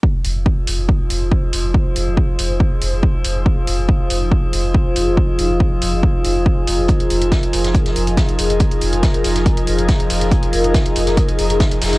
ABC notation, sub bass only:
X:1
M:4/4
L:1/16
Q:1/4=140
K:Fm
V:1 name="Sub bass" clef=bass
z2 F,,, F,,, z2 F,,, F,,, z2 F,,, F,,, z2 F,,, F,,, | z2 F,,, F,,, z2 F,,, F,,, z2 F,,, F,,, z2 F,,, F,,, | z2 F,,, F,,, z2 F,,, F,,, z2 F,,, F,,, z2 F,,, F,,, | z2 F,,, F,,, z2 F,,, F,,, z2 F,,, F,,, z2 F,,, F,,, |
z2 F,,, F,,, z2 F,,, F,,, z2 F,,, F,,, z2 F,,, F,,, | z2 F,,, F,,, z2 F,,, F,,, z2 F,,, F,,, z2 F,,, F,,, | z2 F,,, F,,, z2 F,,, F,,, z2 F,,, F,,, z2 F,,, F,,, |]